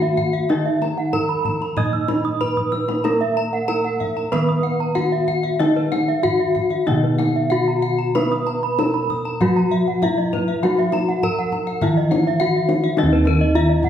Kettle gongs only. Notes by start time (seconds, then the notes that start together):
Already playing: D#3
0.50 D#4
1.14 E4
1.77 A#2
2.41 E4
3.05 A#4
3.69 E4
4.33 D#3
4.96 E4
5.61 D#4
6.24 E4
6.88 B2
7.52 E4
8.16 B4
8.79 E4
9.41 F#3
10.03 E4
10.64 F#4
11.23 E4
11.82 D#3
12.41 E4
12.98 D#4
13.03 D#2
13.55 E4